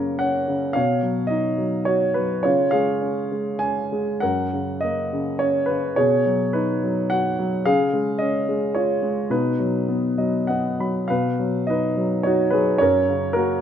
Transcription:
Already playing: F#2 C#3 A#3 A#4 C#5
0.19 C#4 F#5
0.48 C#3
0.73 B2 C#5 F5
1.03 F#3
1.27 D#4 D#5
1.58 F#3
1.85 F#4 C#5
2.14 F#3 B4
2.43 C#3 F4 C#5
2.71 G#3 G#4 F5
3.01 C#4
3.32 G#3
3.59 C#4 G#5
3.92 G#3
4.20 F#2 A#4 F#5
4.53 C#3
4.81 A#3 D#5
5.13 C#3
5.39 C#4 C#5
5.66 B4
5.70 C#3
5.96 B2 G#4 C#5
6.26 F#3
6.53 D#4 B4
6.84 F#3
7.10 F#4 F#5
7.39 F#3
7.66 C#3 G#4 F5
7.93 G#3
8.19 C#4 D#5
8.49 G#3
8.75 F4 C#5
9.02 G#3
9.30 B2 D#4 B4
9.60 F#3
9.88 B3
10.18 F#3 D#5
10.47 B3 D#5 F#5
10.80 F#3 B5
11.08 B2 B4 F5
11.40 F#3
11.67 D#4 B4 D#5
11.97 F#3
12.23 D#4 F#4 C#5
12.50 F#3 G#4 B4
12.78 F#2 A#4 C#5
13.09 C#3
13.33 A#3 F#4 A#4

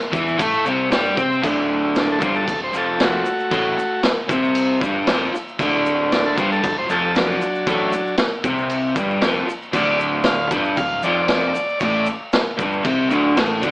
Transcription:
0.01 shaker
0.12 E2 E3 E4, kick, shaker
0.28 shaker
0.38 A2 A3 A4, kick, crash, shaker
0.53 shaker
0.65 C2 C3 C4, shaker
0.91 G2 G3 G4, snare, crash, shaker
1.05 shaker
1.17 C3 C4 C5, kick, shaker
1.32 shaker
1.42 D1 D2 D3, kick, crash, shaker
1.96 D4, snare, crash, shaker
2.12 A4
2.20 G1 G2 G3 C5, kick, shaker
2.35 A4, shaker
2.47 D1 D2, kick, crash, shaker
2.64 C5
2.73 F1 F2 F3, shaker
2.78 A4
3.00 A3, snare, crash, shaker
3.04 F#4
3.25 muted overdriven electric guitar stroke, muted fingered electric bass stroke, shaker
3.40 shaker
3.51 A1 A2 A3, kick, crash, shaker
3.79 shaker
4.03 snare, crash, shaker
4.29 C2 C3 C4, kick, shaker
4.44 shaker
4.55 crash, shaker
4.81 G1 G2 G3, kick, shaker
5.07 F1 F2 F3, snare, crash, shaker
5.33 muted fingered electric bass stroke, muted overdriven electric guitar stroke, shaker
5.48 shaker
5.59 D1 D2 D3, kick, crash, shaker
5.86 shaker
6.12 D4, snare, crash, shaker
6.26 A4
6.37 G1 G2 G3 C5, kick, shaker
6.52 A4, shaker
6.63 D1 D2, kick, crash, shaker
6.78 C5
6.89 F1 F2 F3 A4, shaker
7.15 F#3 D4, snare, crash, shaker
7.41 muted overdriven electric guitar stroke, muted fingered electric bass stroke, shaker
7.55 shaker
7.67 A1 A2 A3, kick, crash, shaker
7.93 shaker
8.06 shaker
8.17 snare, crash, shaker
8.44 C2 C3 C4, kick, shaker
8.58 shaker
8.70 crash, shaker
8.96 G1 G2 G3, kick, shaker
9.10 shaker
9.21 F1 F2 F3, snare, crash, shaker
9.47 muted fingered electric bass stroke, muted overdriven electric guitar stroke, shaker
9.62 shaker
9.72 D1 D2 D3 D5, kick, crash, shaker
10.00 shaker
10.24 F5, snare, crash, shaker
10.50 G1 G2 G3, kick, shaker
10.64 shaker
10.76 D1 D2 F5, kick, crash, shaker
11.03 F1 F2 F3 D5, shaker
11.28 snare, crash, shaker
11.55 muted overdriven electric guitar stroke, muted fingered electric bass stroke, shaker
11.69 shaker
11.80 A1 A2 A3 C#5, kick, crash, shaker
11.84 D5
12.06 shaker
12.32 snare, crash, shaker
12.58 G1 G2 G3, kick, shaker
12.72 shaker
12.84 C2 C3 C4, kick, crash, shaker
13.10 D1 D2 D3, shaker
13.36 A1 A2 A3, snare, crash, shaker
13.62 D2 D3 D4, kick, shaker

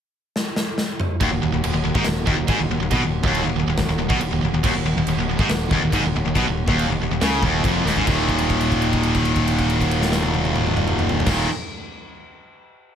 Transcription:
0.36 snare
0.56 snare
0.78 snare
1.00 mid tom
1.21 D#1 D#2 D#3 F#3 A#3 F#4, kick, china
1.32 D#1 D#2
1.43 D#1 D#2
1.53 D#1 D#2
1.64 D#1 D#2, china
1.74 D#1 D#2
1.85 D#1 D#2
1.95 G#1 G#2, kick
2.04 D#1 D#2, snare, china
2.27 D#1 D#2, kick
2.38 D#1 D#2
2.48 G#1 G#2, kick, china
2.59 D#1 D#2
2.70 D#1 D#2
2.80 D#1 D#2
2.91 B1 B2, kick, china
3.02 D#1 D#2
3.23 D#1 D#2, kick
3.27 D#2
3.35 china
3.44 D#1 D#2
3.49 D#2
3.55 D#1 D#2
3.67 D#1 D#2
3.77 D#1 D#2, kick, snare, china
3.88 D#1 D#2
3.98 D#1 D#2
4.10 B1 B2, kick
4.21 D#1 D#2, china
4.31 D#1 D#2
4.42 D#1 D#2
4.53 D#1 D#2
4.64 D#1 D#2, kick, china, crash
4.75 D#1 D#2
4.85 D#1 D#2
4.97 D#1 D#2
5.07 D#1 D#2, china
5.17 D#1 D#2
5.28 D#1 D#2
5.36 G#1 G#2, kick
5.41 G#2
5.49 D#1 D#2, snare, china
5.68 D#1 D#2, kick
5.73 D#2
5.82 D#1 D#2
5.90 G#1 G#2, kick, china
5.94 G#2
6.04 D#1 D#2
6.15 D#1 D#2
6.25 D#1 D#2
6.35 B1 B2, kick, china
6.47 D#1 D#2
6.68 D#1 D#2, kick
6.79 china
6.88 D#1 D#2
6.92 D#2
7.00 D#1 D#2
7.11 D#1 D#2
7.21 C#2 C#3, snare, china
7.42 D#1 D#2, kick
7.64 F1 F2, kick, china
7.85 D#1 D#2, snare
7.96 G#1 G#2, floor tom
8.05 D#1 D#2 D#3 F#3 A#3 F#4, kick, crash
8.11 A#2 D#3
8.29 kick, crash
8.38 crash
8.50 kick, crash
8.61 crash
8.72 kick, crash
8.82 crash
8.93 kick, crash
9.03 crash
9.15 kick, crash
9.25 crash
9.36 kick, crash
9.48 crash
9.58 kick, crash
9.70 crash
9.81 kick, crash
9.91 crash
10.02 snare
10.12 snare
10.23 high tom
10.34 high tom
10.45 high tom
10.56 mid tom
10.66 mid tom
10.77 mid tom
10.88 mid tom
10.99 mid tom
11.09 floor tom
11.20 floor tom
11.25 D#1 D#2 A#2 D#3 F#3 A#3 F#4, kick, snare, crash
11.30 D#3

